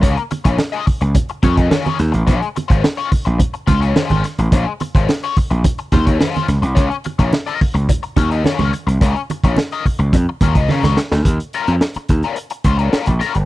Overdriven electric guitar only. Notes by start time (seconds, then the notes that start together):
0.01 A#3 F4 G#4 C#5
0.17 muted overdriven electric guitar stroke
0.31 muted overdriven electric guitar stroke
0.44 A#3 F4 G#4 C#5
0.59 muted overdriven electric guitar stroke
0.72 A#3 F4 G#4 D#5
0.86 muted overdriven electric guitar stroke
1.01 muted overdriven electric guitar stroke
1.15 muted overdriven electric guitar stroke
1.30 muted overdriven electric guitar stroke
1.43 A#3 F4 G#4 C#5
1.57 A#3 F4 G#4 D#5
1.70 A#3 F4 G#4 C#5
1.99 muted overdriven electric guitar stroke
2.12 muted overdriven electric guitar stroke
2.27 G#3 C#4 F4 C5
2.41 muted overdriven electric guitar stroke
2.56 muted overdriven electric guitar stroke
2.68 G#3 C#4 F4 C5
2.84 muted overdriven electric guitar stroke
2.97 G#3 C#4 F4 C#5
3.11 muted overdriven electric guitar stroke
3.25 muted overdriven electric guitar stroke
3.38 muted overdriven electric guitar stroke
3.54 muted overdriven electric guitar stroke
3.67 G#3 C#4 F4 C5
3.81 G#3 C#4 F4 C#5
3.96 G#3 C#4 F4 C5
4.25 muted overdriven electric guitar stroke
4.40 muted overdriven electric guitar stroke
4.53 G#3 C#4 F4 C5
4.67 muted overdriven electric guitar stroke
4.80 muted overdriven electric guitar stroke
4.95 G#3 C#4 F4 C5
5.10 muted overdriven electric guitar stroke
5.24 G#3 C#4 F4 C#5
5.37 muted overdriven electric guitar stroke
5.50 muted overdriven electric guitar stroke
5.64 muted overdriven electric guitar stroke
5.79 muted overdriven electric guitar stroke
5.92 G#3 C#4 F4 C5
6.06 G#3 C#4 F4 C#5
6.18 G3 C4 E4 B4
6.29 G#3 C#4 F4 C5
6.48 muted overdriven electric guitar stroke
6.62 muted overdriven electric guitar stroke
6.75 C#4 F4 A#4 C#5
6.90 muted overdriven electric guitar stroke
7.05 muted overdriven electric guitar stroke
7.19 C#4 F4 A#4 C#5
7.33 muted overdriven electric guitar stroke
7.46 C#4 F4 A#4 D#5
7.61 muted overdriven electric guitar stroke
7.74 muted overdriven electric guitar stroke
7.89 muted overdriven electric guitar stroke
8.03 muted overdriven electric guitar stroke
8.16 C#4 F4 A#4 C#5
8.32 C#4 F4 A#4 D#5
8.45 C#4 F4 A#4 C#5
8.72 muted overdriven electric guitar stroke
8.87 muted overdriven electric guitar stroke
9.01 C#4 F4 A#4 C#5
9.16 muted overdriven electric guitar stroke
9.31 muted overdriven electric guitar stroke
9.44 C#4 F4 A#4 C#5
9.58 muted overdriven electric guitar stroke
9.72 C#4 F4 A#4 D#5
9.86 muted overdriven electric guitar stroke
9.99 muted overdriven electric guitar stroke
10.15 muted overdriven electric guitar stroke
10.29 muted overdriven electric guitar stroke
10.42 C#4 F4 A#4 C#5
10.57 C#4 F4 A#4 D#5
10.70 C#4 F4 A#4 C#5
10.99 muted overdriven electric guitar stroke
11.12 muted overdriven electric guitar stroke
11.54 G3 C#4 F4 A#4
11.81 muted overdriven electric guitar stroke
11.96 muted overdriven electric guitar stroke
12.24 G3 C#4 F4 A#4
12.37 muted overdriven electric guitar stroke
12.51 muted overdriven electric guitar stroke
12.65 G3 C#4 F4 C5
12.79 G3 C#4 F4 A#4
12.92 G3 C#4 F4 A#4
13.07 muted overdriven electric guitar stroke
13.20 G3 C#4 F4 A#4
13.35 muted overdriven electric guitar stroke